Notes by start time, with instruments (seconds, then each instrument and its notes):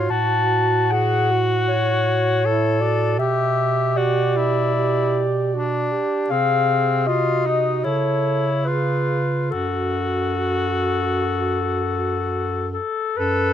Already playing: tenor saxophone F4, alto saxophone F#4
0.10 bass clarinet A2, tenor saxophone F#4, clarinet A5
0.91 tenor saxophone F#4, alto saxophone G#4, clarinet F#5
1.31 alto saxophone F#4
1.68 clarinet C#5
2.45 alto saxophone E4, tenor saxophone A4
2.81 alto saxophone F#4, clarinet D5
3.18 bass clarinet B2, alto saxophone G4, tenor saxophone G4, clarinet E5
3.97 tenor saxophone F#4, clarinet D5
4.37 tenor saxophone E4
4.75 alto saxophone G4
5.53 tenor saxophone D4, alto saxophone F#4
5.92 alto saxophone G4
6.30 bass clarinet C3, tenor saxophone C4, alto saxophone G#4, clarinet F5
7.07 tenor saxophone F4, alto saxophone F#4, clarinet D#5
7.46 tenor saxophone D#4
7.84 bass clarinet C#3, tenor saxophone E4, alto saxophone A4, clarinet C#5
8.65 tenor saxophone F4, alto saxophone G#4, clarinet B4
9.50 bass clarinet F#2, tenor saxophone F#4, alto saxophone F#4, clarinet A4
12.74 clarinet A4
13.17 bass clarinet F#2, tenor saxophone A4, clarinet B4